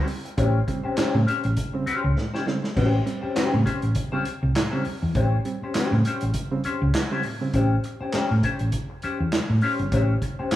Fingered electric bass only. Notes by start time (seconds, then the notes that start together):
0.38 A1
0.85 muted fingered electric bass stroke
0.99 muted fingered electric bass stroke
1.14 A2
1.45 A1
1.87 muted fingered electric bass stroke
2.04 C#2
2.77 A1
3.23 muted fingered electric bass stroke
3.37 muted fingered electric bass stroke
3.54 A2
3.83 A1
4.26 muted fingered electric bass stroke
4.43 C2
4.86 muted fingered electric bass stroke
5.03 E2
5.15 A1
5.62 muted fingered electric bass stroke
5.76 muted fingered electric bass stroke
5.92 A2
6.22 A1
6.65 muted fingered electric bass stroke
6.82 C#2
7.54 A1
8.01 muted fingered electric bass stroke
8.14 muted fingered electric bass stroke
8.31 A2
8.61 A1
9.04 muted fingered electric bass stroke
9.20 E2
9.50 A2
9.79 G1
9.92 A1
10.40 muted fingered electric bass stroke
10.52 muted fingered electric bass stroke